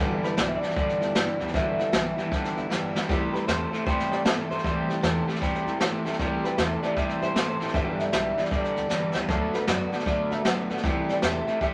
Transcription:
Already playing: G2
0.00 G1 D3 E3 G3 B3 E4
0.23 E3 G3 B3 E4 B4, muted upright bass stroke, snare
0.37 B1 G2 D3 E3 G3 B3 E4 D5, snare, hi-hat pedal
0.47 E5
0.56 D5
0.61 G2 E3 G3 B3 E4, snare
0.70 snare
0.75 B1 G2 D3 E3 G3 B3 E4 D5, kick, snare
0.89 snare
1.01 D2 E3 G3 B3 E4, snare
1.15 G2 D3 E3 G3 B3 E4, snare, hi-hat pedal
1.39 D2 G2 E3 G3 B3 E4, snare
1.47 snare
1.53 G1 G2 D3 E3 G3 B3 E4 E5, kick, snare
1.78 E3 G3 B3 E4, snare
1.92 B1 G2 D3 E3 G3 B3 E4, snare, hi-hat pedal
2.17 G2 E3 G3 B3 E4, snare
2.31 G2 D3 E3 G3 B3 E4, kick, snare
2.44 snare
2.56 D2 E3 G3 B3 E4, snare
2.70 F2 G2 D3 E3 G3 B3 E4, snare, hi-hat pedal
2.95 D2 G2 E3 G3 B3 E4, snare
3.09 C2 C3 E3 G3 A3 E4 G4, kick, snare
3.33 A3 E4 G4 B4, muted upright bass stroke, snare
3.47 E2 C3 E3 A3 E4 G4 C5, snare, hi-hat pedal
3.72 C3 A3 E4 G4, snare
3.86 C3 E3 G3 A3 E4 G4 C5, kick, snare
3.99 snare
4.11 G2 A3 E4 G4 D5, snare
4.25 A2 C3 E3 A3 E4 G4 E5, snare, hi-hat pedal
4.50 G2 C3 A3 E4 G4 C5, snare
4.58 snare
4.64 C2 C3 E3 G3 A3 E4 G4, kick, snare
4.89 A3 E4 G4, snare
5.02 E2 C3 E3 A3 E4 G4, snare, hi-hat pedal
5.27 C3 A3 E4 G4, snare
5.35 snare
5.41 C3 E3 G3 A3 E4 G4, kick, snare
5.55 snare
5.66 G2 A3 E4 G4, snare
5.80 A2 C3 E3 A3 E4 G4, snare, hi-hat pedal
6.05 G2 C3 A3 E4 G4, snare
6.13 snare
6.19 C2 C3 E3 G3 A3 E4 G4, kick, snare
6.44 A3 E4 G4 B4, muted upright bass stroke, snare
6.57 E2 C3 E3 A3 E4 G4 C5, snare, hi-hat pedal
6.83 C3 A3 E4 G4 D5, snare
6.96 E2 C3 E3 G3 A3 E4 G4 E5, kick, snare
7.09 snare
7.21 G2 A3 E4 G4 C5, snare
7.35 A2 C3 E3 A3 E4 G4, snare, hi-hat pedal
7.48 C5
7.60 A1 C3 A3 E4 G4, snare
7.67 snare
7.74 G1 G2 D3 E3 G3 B3 G4 E5, kick, snare
7.98 E3 G3 B3 G4 D5, muted upright bass stroke, snare
8.12 B1 G2 D3 E3 G3 B3 G4 E5, snare, hi-hat pedal
8.37 G2 E3 G3 B3 G4 D5, muted upright bass stroke, snare
8.45 snare
8.51 B1 G2 D3 E3 G3 B3 G4 D5, kick, snare
8.64 snare
8.76 D2 E3 G3 B3 G4, snare
8.89 F2 G2 D3 E3 G3 B3 G4, snare, hi-hat pedal
9.14 D2 G2 E3 G3 B3 G4, snare
9.28 D2 D3 F#3 A3 B3 F#4, kick, snare
9.53 A3 B3 F#4 B4, snare
9.67 F#2 D3 F#3 A3 B3 F#4 D5, snare, hi-hat pedal
9.92 D3 A3 B3 F#4, muted upright bass stroke, snare
9.99 snare
10.06 D3 F#3 A3 B3 F#4 D5, kick, snare
10.30 A2 A3 B3 F#4 E5, snare
10.45 C3 D3 F#3 A3 B3 F#4 F#5, snare, hi-hat pedal
10.70 A2 D3 A3 B3 F#4, snare
10.77 snare
10.84 C2 C3 E3 G3 A3 E4 G4, kick, snare
11.08 A3 E4 G4 D5, muted upright bass stroke, snare
11.22 E2 C3 E3 A3 E4 G4 E5, snare, hi-hat pedal
11.47 C3 A3 E4 G4, snare
11.60 E2 C3 E3 G3 A3 E4 G4 E5, kick, snare

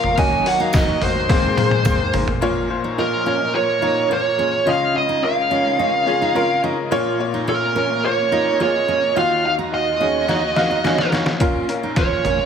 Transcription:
Already playing: A#1 A#2 F3 A#3 C#4 F4 A#4 C5 C#5 D#5 F5
0.04 floor tom
0.17 D#2 D#3 F#3 A#3 C#4 F#4 D#5 G#5, kick, open hi-hat
0.45 A#3 F#4 C#5 F#5, open hi-hat
0.60 D#4 F5
0.73 A#3 F#4 D#5, kick, snare, open hi-hat, tambourine
1.02 A#3 F#4 C5 D#5, floor tom, open hi-hat
1.29 G#1 G#2 G#3 A#3 C4 G#4 C5, kick, snare, open hi-hat
1.57 A#3 G#4 C5, open hi-hat, high tom
1.71 high tom
1.85 A#3 C4 G#4 C5, kick, open hi-hat, mid tom, tambourine
2.13 A#3 D#4 G#4 C5, floor tom, open hi-hat
2.28 floor tom
2.41 A#1 A#2 F3 A#3 C#4 F4 A#4 C#5
2.69 A#3 F4 C5
2.84 D#4
2.97 A#3 F4 A#4 D#5
3.26 A#3 C#4 F4 C#5
3.54 A#3 F4 A#4 C#5
3.81 A#3 D#4 F4 C#5
4.10 A#3 F4 C#5
4.38 A#3 C#4 F4 G#4
4.66 C#2 C#3 G#3 C#4 D#4 F4 D#5 F5
4.94 C#4 F4 D#5
5.09 D#4
5.22 C#4 F4 A#4 F5
5.50 C#4 F4 D#5
5.78 C#4 F4 D#5
6.06 C#4 F4 G#4
6.22 D#4
6.35 C#4 F4 A#4
6.63 C#4 D#4 F4 D#5
6.91 A#1 A#2 A#3 C#4 F4 C#5
7.19 A#3 F4 C#5
7.34 D#4
7.47 A#3 F4 A#4 C#5
7.75 A#3 C#4 F4 A#4
8.03 A#3 F4 C#5
8.32 A#3 D#4 F4 D#5
8.60 A#3 F4 G#4 C#5
8.88 A#3 C#4 F4 D#5
9.16 D#2 D#3 D#4 F4 F#4 F5
9.44 D#4 F#4 F5
9.59 D#4
9.72 D#4 F#4 D#5 F5
10.00 C#4 D#4 F#4 G#4
10.28 D#4 F#4 C#5, snare
10.56 D#4 F#4 F5 F#5, snare
10.71 D#4
10.84 C#4 D#4 F#4 F5 G#5, snare
10.98 snare
11.12 D#4 F#4 C#5 A#5, snare
11.26 snare
11.40 A#1 A#2 A#3 C#4 F4 A#4 F5, kick, closed hi-hat
11.68 C#4 A#4 F5, closed hi-hat
11.83 D#4
11.96 C#4 F4 A#4 C5 C#5, kick, snare, closed hi-hat
12.25 C#4 A#4 C#5, closed hi-hat, floor tom

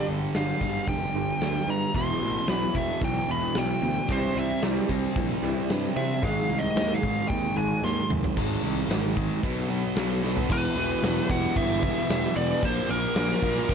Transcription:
Already playing: G2 D3 G3
0.08 G1 G2 D3
0.34 G1 G2 D3 G3 F5, snare, open hi-hat
0.61 G1 G2 D3 G3, kick
0.87 F1 G2 D3 G5, kick, open hi-hat
1.14 G1 G2 D3 G3
1.41 D2 G2 D3, snare, open hi-hat
1.68 G2 D3 A#5
1.94 E1 E2 B2 E3 C6, kick, open hi-hat
2.21 A1 E2 B2
2.47 B1 E2 B2 E3 B5, snare, open hi-hat
2.73 E1 E2 B2 E3 E5, kick
3.01 B1 E2 B2 G5, kick, open hi-hat
3.28 E1 E2 B2 E3 B5
3.55 B1 E2 B2 G5, snare, open hi-hat
3.82 D2 E2 B2
4.08 C2 C3 E3 G3 C4 C5, kick, open hi-hat
4.35 C2 C3 E3 E5
4.62 C2 C3 E3 G3, snare, open hi-hat
4.89 C2 C3 E3 G3 C4, kick
5.16 A#1 C3 E3, kick, open hi-hat
5.42 C2 C3 E3 G3
5.69 G2 C3 E3, snare, open hi-hat
5.96 C3 E3 E5
6.22 G#1 G#2 D#3 G#3 F5, kick, open hi-hat
6.49 C2 G#2 D#3
6.58 D#5
6.75 D#2 G#2 D#3 G#3, snare, open hi-hat
6.94 F5
7.03 G#1 G#2 D#3 G#3, kick
7.28 D#2 G#2 D#3 G5, kick, open hi-hat
7.56 G#1 G#2 D#3 G#3 G#5
7.83 D#2 G#2 D#3 C6, snare
8.09 F1 G#2 D#3, mid tom
8.24 floor tom
8.37 G#1 G#2 D#3 G#3, kick, crash
8.63 C2 G#2 D#3 G#3
8.89 G#1 G#2 D#3 G#3, snare, open hi-hat
9.17 G#2 D#3 G#3, kick
9.43 B1 B2 F#3 B3, kick, open hi-hat
9.69 B2 F#3 B3
9.96 B1 B2 F#3 B3, snare, open hi-hat
10.23 B2 F#3 B3, snare
10.37 floor tom
10.49 E1 E2 B2 E3 E4 G4 B4 G5, kick, crash
10.76 E1 E2 B2 E3, crash
11.02 E1 E2 B2 E3, snare, crash
11.29 E1 E2 B2 E3 F#5, kick, crash
11.56 G1 E2 B2 E3 E5, kick, crash
11.83 E2 B2 E3, kick, crash
12.10 E1 E2 B2 E3, snare, crash
12.36 E1 E2 B2 E3 D5, crash
12.63 A#1 A#2 F3 A#3 D4 F4 A#4 C5 F5, kick, crash
12.89 A#1 A#2 F3 A#3 A#4, crash
13.15 A#1 A#2 F3 A#3, snare, crash
13.42 A#1 A#2 F3 A#3, kick, crash
13.56 snare
13.69 A#1 A#2 F3 A#3, kick, crash

